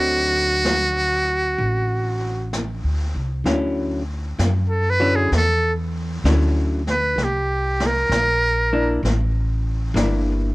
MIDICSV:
0, 0, Header, 1, 5, 480
1, 0, Start_track
1, 0, Tempo, 928793
1, 1788, Time_signature, 4, 2, 24, 8
1, 5451, End_track
2, 0, Start_track
2, 0, Title_t, "Muted trumpet"
2, 0, Program_c, 0, 59
2, 0, Note_on_c, 0, 66, 105
2, 1310, Note_off_c, 0, 66, 0
2, 2425, Note_on_c, 0, 69, 67
2, 2530, Note_on_c, 0, 71, 83
2, 2538, Note_off_c, 0, 69, 0
2, 2665, Note_on_c, 0, 68, 69
2, 2673, Note_off_c, 0, 71, 0
2, 2748, Note_off_c, 0, 68, 0
2, 2773, Note_on_c, 0, 69, 74
2, 2958, Note_off_c, 0, 69, 0
2, 3566, Note_on_c, 0, 71, 81
2, 3739, Note_on_c, 0, 67, 65
2, 3747, Note_off_c, 0, 71, 0
2, 4064, Note_on_c, 0, 70, 87
2, 4072, Note_off_c, 0, 67, 0
2, 4682, Note_off_c, 0, 70, 0
2, 5451, End_track
3, 0, Start_track
3, 0, Title_t, "Hollow-body jazz guitar"
3, 0, Program_c, 1, 26
3, 0, Note_on_c, 1, 50, 51
3, 0, Note_on_c, 1, 54, 50
3, 0, Note_on_c, 1, 60, 55
3, 0, Note_on_c, 1, 63, 53
3, 1781, Note_off_c, 1, 50, 0
3, 1783, Note_off_c, 1, 54, 0
3, 1787, Note_on_c, 1, 50, 44
3, 1789, Note_on_c, 1, 54, 49
3, 1790, Note_off_c, 1, 63, 0
3, 1791, Note_off_c, 1, 60, 0
3, 1792, Note_on_c, 1, 64, 52
3, 1793, Note_on_c, 1, 61, 54
3, 2074, Note_off_c, 1, 50, 0
3, 2075, Note_off_c, 1, 54, 0
3, 2077, Note_off_c, 1, 64, 0
3, 2078, Note_off_c, 1, 61, 0
3, 2584, Note_on_c, 1, 50, 51
3, 2584, Note_on_c, 1, 54, 57
3, 2591, Note_on_c, 1, 61, 57
3, 2591, Note_on_c, 1, 64, 56
3, 2731, Note_off_c, 1, 54, 0
3, 2732, Note_off_c, 1, 50, 0
3, 2735, Note_off_c, 1, 61, 0
3, 2735, Note_off_c, 1, 64, 0
3, 3231, Note_on_c, 1, 50, 56
3, 3231, Note_on_c, 1, 61, 60
3, 3232, Note_on_c, 1, 54, 60
3, 3235, Note_on_c, 1, 64, 64
3, 3517, Note_off_c, 1, 50, 0
3, 3517, Note_off_c, 1, 61, 0
3, 3518, Note_off_c, 1, 54, 0
3, 3519, Note_off_c, 1, 64, 0
3, 4512, Note_on_c, 1, 58, 52
3, 4512, Note_on_c, 1, 62, 65
3, 4515, Note_on_c, 1, 64, 60
3, 4652, Note_off_c, 1, 58, 0
3, 4652, Note_off_c, 1, 62, 0
3, 4653, Note_off_c, 1, 64, 0
3, 5145, Note_on_c, 1, 58, 52
3, 5151, Note_on_c, 1, 62, 50
3, 5152, Note_on_c, 1, 64, 55
3, 5427, Note_off_c, 1, 58, 0
3, 5430, Note_off_c, 1, 62, 0
3, 5431, Note_off_c, 1, 64, 0
3, 5451, End_track
4, 0, Start_track
4, 0, Title_t, "Upright bass"
4, 0, Program_c, 2, 32
4, 0, Note_on_c, 2, 38, 74
4, 795, Note_off_c, 2, 38, 0
4, 818, Note_on_c, 2, 33, 84
4, 1444, Note_off_c, 2, 33, 0
4, 1466, Note_on_c, 2, 38, 49
4, 1616, Note_off_c, 2, 38, 0
4, 1626, Note_on_c, 2, 36, 61
4, 1776, Note_off_c, 2, 36, 0
4, 1779, Note_on_c, 2, 38, 66
4, 2249, Note_off_c, 2, 38, 0
4, 2267, Note_on_c, 2, 42, 76
4, 2734, Note_off_c, 2, 42, 0
4, 2748, Note_on_c, 2, 40, 72
4, 3215, Note_off_c, 2, 40, 0
4, 3224, Note_on_c, 2, 38, 81
4, 3692, Note_off_c, 2, 38, 0
4, 3699, Note_on_c, 2, 36, 66
4, 4168, Note_off_c, 2, 36, 0
4, 4183, Note_on_c, 2, 34, 82
4, 4647, Note_off_c, 2, 34, 0
4, 4666, Note_on_c, 2, 33, 76
4, 5127, Note_off_c, 2, 33, 0
4, 5138, Note_on_c, 2, 31, 92
4, 5451, Note_off_c, 2, 31, 0
4, 5451, End_track
5, 0, Start_track
5, 0, Title_t, "Drums"
5, 336, Note_on_c, 9, 25, 33
5, 336, Note_on_c, 9, 38, 50
5, 336, Note_on_c, 9, 44, 48
5, 388, Note_off_c, 9, 38, 0
5, 388, Note_off_c, 9, 44, 0
5, 821, Note_off_c, 9, 25, 0
5, 821, Note_on_c, 9, 25, 37
5, 1308, Note_off_c, 9, 25, 0
5, 1308, Note_on_c, 9, 25, 37
5, 1308, Note_on_c, 9, 38, 46
5, 1308, Note_on_c, 9, 44, 54
5, 1360, Note_off_c, 9, 38, 0
5, 1360, Note_off_c, 9, 44, 0
5, 1786, Note_off_c, 9, 25, 0
5, 1786, Note_on_c, 9, 25, 39
5, 1786, Note_on_c, 9, 38, 39
5, 1838, Note_off_c, 9, 38, 0
5, 2270, Note_on_c, 9, 38, 55
5, 2270, Note_on_c, 9, 44, 58
5, 2322, Note_off_c, 9, 38, 0
5, 2322, Note_off_c, 9, 44, 0
5, 2750, Note_off_c, 9, 25, 0
5, 2750, Note_on_c, 9, 25, 42
5, 2750, Note_on_c, 9, 38, 36
5, 2802, Note_off_c, 9, 38, 0
5, 3230, Note_on_c, 9, 38, 52
5, 3230, Note_on_c, 9, 44, 55
5, 3282, Note_off_c, 9, 38, 0
5, 3282, Note_off_c, 9, 44, 0
5, 3550, Note_on_c, 9, 38, 32
5, 3602, Note_off_c, 9, 38, 0
5, 3709, Note_off_c, 9, 25, 0
5, 3709, Note_on_c, 9, 25, 36
5, 3709, Note_on_c, 9, 38, 36
5, 3761, Note_off_c, 9, 38, 0
5, 4031, Note_on_c, 9, 38, 44
5, 4083, Note_off_c, 9, 38, 0
5, 4194, Note_on_c, 9, 38, 55
5, 4194, Note_on_c, 9, 44, 51
5, 4246, Note_off_c, 9, 38, 0
5, 4246, Note_off_c, 9, 44, 0
5, 4676, Note_off_c, 9, 25, 0
5, 4676, Note_on_c, 9, 25, 40
5, 4676, Note_on_c, 9, 38, 40
5, 4728, Note_off_c, 9, 38, 0
5, 5148, Note_on_c, 9, 38, 56
5, 5148, Note_on_c, 9, 44, 54
5, 5200, Note_off_c, 9, 38, 0
5, 5200, Note_off_c, 9, 44, 0
5, 5451, Note_off_c, 9, 25, 0
5, 5451, End_track
0, 0, End_of_file